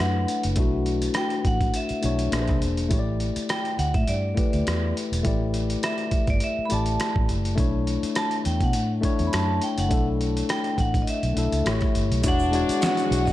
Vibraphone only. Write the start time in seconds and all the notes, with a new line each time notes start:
0.00 F#5
1.17 G5
1.47 F#5
1.76 E5
3.50 G5
3.78 F#5 G5
3.95 E5
4.08 D5
5.84 E5
6.30 D5
6.44 E5
6.65 B5
6.73 A5
8.17 A5
8.46 G5
8.64 F#5
9.27 B5
9.33 A5
9.63 G5
9.79 F#5
10.50 G5
10.80 F#5
11.02 D#5
11.09 E5
12.28 F#5
12.86 F#5
13.25 D#5